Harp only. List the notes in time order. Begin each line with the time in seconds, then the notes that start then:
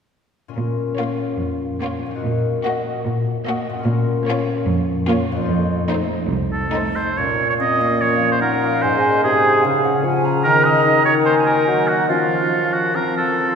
0.48 A#2 C#4 F4
0.53 A#4
2.06 A#2
2.11 D#4
2.15 F#4
2.20 A#4
3.69 A#2
3.74 C#4
3.79 F4
3.83 A#4
5.32 F2
5.36 C4
5.41 D#4
5.45 A4
7.18 A#2
7.39 C#4
7.60 A#4
7.81 F4
8.01 F3
8.22 C#4
8.43 A#4
8.63 F4
8.84 G#2
9.04 D#4
9.24 C5
9.44 G#4
9.64 C#3
9.84 F4
10.04 C#5
10.25 G#4
10.45 D#3
10.66 D#4
10.85 A#4
11.05 F#4
11.26 A#3
11.46 D#4
11.67 A#4
11.88 F#4
12.09 F3
12.31 F4
12.53 C#5
12.74 A#4
12.96 F3
13.17 F4
13.38 C5